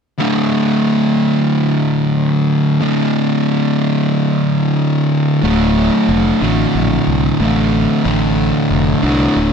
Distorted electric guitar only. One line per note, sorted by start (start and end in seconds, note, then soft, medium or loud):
0.18 2.80 D2 medium
0.18 2.80 A2 medium
0.18 2.82 D3 medium
2.81 5.41 D2 medium
2.81 5.42 A2 medium
2.81 5.43 D3 medium
5.43 6.43 D2 medium
5.43 6.40 A2 medium
5.43 6.41 D3 medium
6.42 7.40 D2 medium
6.42 7.39 A2 medium
6.42 7.42 D3 medium
7.40 8.04 D2 medium
7.40 8.04 A2 medium
7.40 8.06 D3 medium
8.04 9.05 D2 medium
8.04 9.02 A2 medium
8.04 9.03 D3 medium
9.03 9.53 D2 medium
9.03 9.53 A2 medium
9.03 9.53 D3 medium